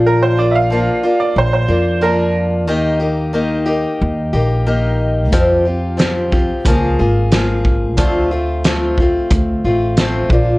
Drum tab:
HH |--------|--------|x-x-x-x-|x-x-x-x-|
SD |--------|--------|--o---o-|--o---o-|
BD |--------|--------|o--oo--o|o--oo--o|